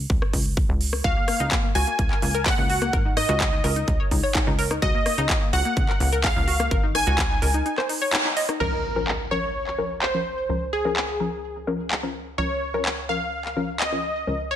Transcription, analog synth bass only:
0, 0, Header, 1, 2, 480
1, 0, Start_track
1, 0, Key_signature, -5, "major"
1, 0, Tempo, 472441
1, 1061, Time_signature, 4, 2, 24, 8
1, 14791, End_track
2, 0, Start_track
2, 0, Title_t, "Analog synth bass"
2, 0, Program_c, 0, 38
2, 100, Note_on_c, 0, 37, 94
2, 203, Note_off_c, 0, 37, 0
2, 340, Note_on_c, 0, 37, 88
2, 671, Note_off_c, 0, 37, 0
2, 704, Note_on_c, 0, 37, 91
2, 1029, Note_off_c, 0, 37, 0
2, 1059, Note_on_c, 0, 37, 96
2, 1163, Note_off_c, 0, 37, 0
2, 1424, Note_on_c, 0, 37, 80
2, 1521, Note_off_c, 0, 37, 0
2, 1780, Note_on_c, 0, 37, 99
2, 1883, Note_off_c, 0, 37, 0
2, 2020, Note_on_c, 0, 37, 88
2, 2123, Note_off_c, 0, 37, 0
2, 2259, Note_on_c, 0, 37, 95
2, 2591, Note_off_c, 0, 37, 0
2, 2624, Note_on_c, 0, 37, 96
2, 2949, Note_off_c, 0, 37, 0
2, 2980, Note_on_c, 0, 32, 89
2, 3311, Note_off_c, 0, 32, 0
2, 3342, Note_on_c, 0, 37, 98
2, 3668, Note_off_c, 0, 37, 0
2, 3699, Note_on_c, 0, 37, 96
2, 3901, Note_off_c, 0, 37, 0
2, 3940, Note_on_c, 0, 37, 96
2, 4043, Note_off_c, 0, 37, 0
2, 4180, Note_on_c, 0, 37, 92
2, 4283, Note_off_c, 0, 37, 0
2, 4543, Note_on_c, 0, 37, 88
2, 4869, Note_off_c, 0, 37, 0
2, 4900, Note_on_c, 0, 37, 100
2, 5003, Note_off_c, 0, 37, 0
2, 5263, Note_on_c, 0, 37, 83
2, 5361, Note_off_c, 0, 37, 0
2, 5620, Note_on_c, 0, 37, 104
2, 5723, Note_off_c, 0, 37, 0
2, 5860, Note_on_c, 0, 37, 89
2, 5963, Note_off_c, 0, 37, 0
2, 6100, Note_on_c, 0, 37, 100
2, 6431, Note_off_c, 0, 37, 0
2, 6463, Note_on_c, 0, 37, 96
2, 6789, Note_off_c, 0, 37, 0
2, 6819, Note_on_c, 0, 32, 91
2, 7151, Note_off_c, 0, 32, 0
2, 7183, Note_on_c, 0, 37, 101
2, 7509, Note_off_c, 0, 37, 0
2, 7540, Note_on_c, 0, 37, 98
2, 7741, Note_off_c, 0, 37, 0
2, 8740, Note_on_c, 0, 37, 85
2, 10637, Note_off_c, 0, 37, 0
2, 10660, Note_on_c, 0, 37, 85
2, 12557, Note_off_c, 0, 37, 0
2, 12580, Note_on_c, 0, 37, 84
2, 14477, Note_off_c, 0, 37, 0
2, 14501, Note_on_c, 0, 37, 86
2, 14791, Note_off_c, 0, 37, 0
2, 14791, End_track
0, 0, End_of_file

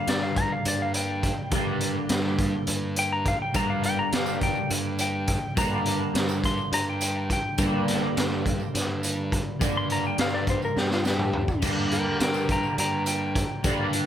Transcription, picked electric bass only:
0, 0, Header, 1, 2, 480
1, 0, Start_track
1, 0, Key_signature, -2, "minor"
1, 0, Tempo, 577478
1, 1268, Time_signature, 7, 3, 24, 8
1, 11688, End_track
2, 0, Start_track
2, 0, Title_t, "Picked electric bass"
2, 0, Program_c, 0, 34
2, 63, Note_on_c, 0, 43, 97
2, 425, Note_off_c, 0, 43, 0
2, 545, Note_on_c, 0, 43, 98
2, 1088, Note_off_c, 0, 43, 0
2, 1264, Note_on_c, 0, 43, 98
2, 1626, Note_off_c, 0, 43, 0
2, 1743, Note_on_c, 0, 43, 96
2, 2106, Note_off_c, 0, 43, 0
2, 2228, Note_on_c, 0, 43, 94
2, 2770, Note_off_c, 0, 43, 0
2, 2949, Note_on_c, 0, 43, 99
2, 3310, Note_off_c, 0, 43, 0
2, 3431, Note_on_c, 0, 43, 93
2, 3791, Note_off_c, 0, 43, 0
2, 3911, Note_on_c, 0, 43, 88
2, 4451, Note_off_c, 0, 43, 0
2, 4630, Note_on_c, 0, 43, 99
2, 4991, Note_off_c, 0, 43, 0
2, 5105, Note_on_c, 0, 43, 98
2, 5467, Note_off_c, 0, 43, 0
2, 5586, Note_on_c, 0, 43, 89
2, 6127, Note_off_c, 0, 43, 0
2, 6304, Note_on_c, 0, 43, 102
2, 6666, Note_off_c, 0, 43, 0
2, 6791, Note_on_c, 0, 43, 99
2, 7150, Note_off_c, 0, 43, 0
2, 7269, Note_on_c, 0, 43, 94
2, 7808, Note_off_c, 0, 43, 0
2, 7989, Note_on_c, 0, 43, 95
2, 8348, Note_off_c, 0, 43, 0
2, 8466, Note_on_c, 0, 43, 101
2, 8825, Note_off_c, 0, 43, 0
2, 8947, Note_on_c, 0, 43, 88
2, 9486, Note_off_c, 0, 43, 0
2, 9663, Note_on_c, 0, 43, 97
2, 10023, Note_off_c, 0, 43, 0
2, 10144, Note_on_c, 0, 43, 99
2, 10504, Note_off_c, 0, 43, 0
2, 10622, Note_on_c, 0, 43, 93
2, 11162, Note_off_c, 0, 43, 0
2, 11340, Note_on_c, 0, 43, 96
2, 11688, Note_off_c, 0, 43, 0
2, 11688, End_track
0, 0, End_of_file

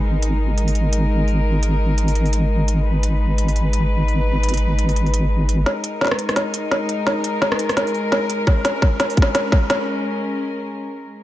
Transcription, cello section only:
0, 0, Header, 1, 2, 480
1, 0, Start_track
1, 0, Key_signature, 5, "minor"
1, 0, Tempo, 350877
1, 67, Time_signature, 4, 2, 24, 8
1, 15365, End_track
2, 0, Start_track
2, 0, Title_t, "Cello section"
2, 0, Program_c, 0, 48
2, 0, Note_on_c, 0, 56, 71
2, 0, Note_on_c, 0, 63, 64
2, 70, Note_on_c, 0, 70, 80
2, 3898, Note_off_c, 0, 70, 0
2, 3905, Note_on_c, 0, 71, 82
2, 7691, Note_off_c, 0, 56, 0
2, 7691, Note_off_c, 0, 63, 0
2, 7735, Note_off_c, 0, 71, 0
2, 7743, Note_on_c, 0, 56, 74
2, 7744, Note_on_c, 0, 63, 69
2, 7746, Note_on_c, 0, 70, 85
2, 11547, Note_off_c, 0, 63, 0
2, 11582, Note_on_c, 0, 61, 70
2, 15365, Note_off_c, 0, 56, 0
2, 15365, Note_off_c, 0, 61, 0
2, 15365, Note_off_c, 0, 70, 0
2, 15365, End_track
0, 0, End_of_file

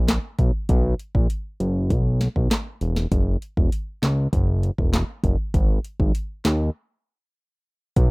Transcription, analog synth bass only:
0, 0, Header, 1, 2, 480
1, 0, Start_track
1, 0, Key_signature, 5, "major"
1, 0, Tempo, 606061
1, 549, Time_signature, 4, 2, 24, 8
1, 6422, End_track
2, 0, Start_track
2, 0, Title_t, "Analog synth bass"
2, 0, Program_c, 0, 38
2, 0, Note_on_c, 0, 34, 91
2, 148, Note_off_c, 0, 34, 0
2, 306, Note_on_c, 0, 35, 89
2, 407, Note_off_c, 0, 35, 0
2, 548, Note_on_c, 0, 35, 111
2, 748, Note_off_c, 0, 35, 0
2, 909, Note_on_c, 0, 34, 90
2, 1009, Note_off_c, 0, 34, 0
2, 1268, Note_on_c, 0, 30, 93
2, 1508, Note_on_c, 0, 35, 99
2, 1520, Note_off_c, 0, 30, 0
2, 1808, Note_off_c, 0, 35, 0
2, 1869, Note_on_c, 0, 35, 91
2, 1968, Note_off_c, 0, 35, 0
2, 2229, Note_on_c, 0, 28, 92
2, 2428, Note_off_c, 0, 28, 0
2, 2469, Note_on_c, 0, 30, 99
2, 2668, Note_off_c, 0, 30, 0
2, 2830, Note_on_c, 0, 28, 88
2, 2929, Note_off_c, 0, 28, 0
2, 3188, Note_on_c, 0, 37, 89
2, 3388, Note_off_c, 0, 37, 0
2, 3428, Note_on_c, 0, 30, 109
2, 3728, Note_off_c, 0, 30, 0
2, 3789, Note_on_c, 0, 28, 88
2, 3989, Note_off_c, 0, 28, 0
2, 4147, Note_on_c, 0, 30, 93
2, 4247, Note_off_c, 0, 30, 0
2, 4389, Note_on_c, 0, 32, 105
2, 4588, Note_off_c, 0, 32, 0
2, 4749, Note_on_c, 0, 32, 88
2, 4849, Note_off_c, 0, 32, 0
2, 5108, Note_on_c, 0, 39, 92
2, 5308, Note_off_c, 0, 39, 0
2, 6308, Note_on_c, 0, 35, 113
2, 6422, Note_off_c, 0, 35, 0
2, 6422, End_track
0, 0, End_of_file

